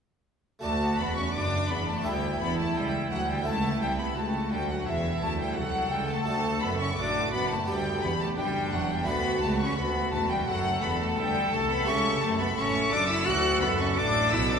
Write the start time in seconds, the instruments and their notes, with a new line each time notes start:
0.59 harpsichord A3 F#4 D5, violin section A5
0.63 harpsichord D2, double bass section D2, cello section D2, cello A3, viola section F#4, violin section A5
0.99 double bass section E1, harpsichord E2, cello section E2, cello B3, violin section B5
1.17 cello C#4, violin section C#6
1.34 double bass section F#1, harpsichord F#2, cello section F#2, viola section D4, cello D4, violin section D6
1.69 double bass section E1, harpsichord E2, cello section E2, cello B3, violin section B5
1.88 cello A3, violin section A5
2.01 harpsichord B3 E4 E5
2.05 harpsichord D2, cello section D2, double bass section D2, cello G3, viola section E4, violin section G5
2.40 double bass section E1, harpsichord E2, cello section E2, cello B3, violin section B5
2.59 cello A3, violin section A5
2.76 double bass section C#2, cello section C#2, harpsichord C#2, cello G3, violin section G5
3.10 double bass section D2, cello section D2, harpsichord D2, cello F#3, violin section F#5
3.28 cello G3, violin section G5
3.42 harpsichord A3 E4 E5
3.46 double bass section C#2, cello section C#2, harpsichord C#2, cello A3, viola section E4, violin section A5
3.81 cello section C2, double bass section C2, harpsichord C2, cello G3, violin section G5
4.00 cello B3, violin section B5
4.16 cello section C#2, double bass section C#2, harpsichord C#2, cello A3, viola section F#4, violin section A5
4.51 double bass section D2, harpsichord D2, cello section D2, cello G3, violin section G5
4.70 cello F#3, violin section F#5
4.87 double bass section E1, cello section E2, harpsichord E2, cello E3, viola section E4, violin section E5
5.22 cello section D2, double bass section D2, harpsichord D2, cello A3, violin section A5
5.39 cello G3, violin section G5
5.55 cello section C2, double bass section C2, harpsichord C2, cello F#3, viola section A4, violin section F#5
5.91 cello section C#2, double bass section C#2, harpsichord C#2, cello G3, violin section G5
6.09 cello A3, violin section A5
6.24 double bass section D2, harpsichord A3 F#4 D5, violin section A5
6.28 cello section D2, harpsichord D2, cello A3, violin section A5
6.61 double bass section F#1, harpsichord F#2, cello section F#2, cello B3, violin section B5
6.79 cello C#4, violin section C#6
6.97 double bass section A1, harpsichord A2, cello section A2, cello D4, viola section F#4, violin section D6
7.33 double bass section F#1, harpsichord F#2, cello section F#2, cello B3, violin section B5
7.50 cello A3, violin section A5
7.64 double bass section D2, harpsichord B3 G4 D5, viola section G4, violin section G5
7.68 cello section D2, harpsichord D2, cello G3, violin section G5
8.02 double bass section E1, cello section E2, harpsichord E2, cello B3, violin section B5
8.20 cello A3, violin section A5
8.37 double bass section F#1, cello section F#2, harpsichord F#2, cello G3, viola section D4, violin section G5
8.72 double bass section E1, cello section E2, harpsichord E2, cello F#3, violin section F#5
8.90 cello G3, violin section G5
9.03 harpsichord A3 F#4 D5, violin section B5
9.08 cello section D2, double bass section D2, harpsichord D2, cello B3, viola section F#4, violin section B5
9.42 cello section C#2, harpsichord C#2, double bass section C#2, cello A3, violin section A5
9.60 cello C#4, violin section C#6
9.77 double bass section D2, cello section D2, harpsichord D2, cello B3, viola section F#4, violin section B5
10.12 double bass section E1, harpsichord E2, cello section E2, cello A3, violin section A5
10.30 cello G3, violin section G5
10.47 double bass section F#1, harpsichord F#2, cello section F#2, cello F#3, viola section A4, violin section F#5
10.82 double bass section E1, harpsichord E2, cello section E2, cello B3, violin section B5
11.00 cello A3, violin section A5
11.17 harpsichord D2, double bass section D2, cello section D2, cello G3, violin section G5
11.52 double bass section C2, cello section C2, harpsichord C2, cello A3, violin section A5
11.70 cello B3, violin section B5
11.84 harpsichord A3 G4 E5, violin section C#6
11.88 double bass section C#2, cello section C#2, harpsichord C#2, cello C#4
12.22 double bass section F#1, cello section F#2, harpsichord F#2, cello A3, violin section A5
12.39 cello B3, violin section B5
12.57 double bass section A1, harpsichord A2, cello section A2, cello C#4, viola section A4, violin section C#6
12.92 double bass section F#1, cello section F#2, harpsichord F#2, cello D4, violin section D6
13.09 cello E4, violin section E6
13.24 double bass section D2, harpsichord A3 F#4 D5, cello F#4, violin section F#6
13.28 cello section D2, harpsichord D2
13.61 double bass section F#1, harpsichord F#2, cello section F#2, cello B3, violin section B5
13.79 cello C#4, violin section C#6
13.97 double bass section A1, cello section A2, harpsichord A2, cello D4, violin section D6
14.31 double bass section B1, cello section B2, harpsichord B2, cello E4, violin section E6
14.49 cello D4, violin section D6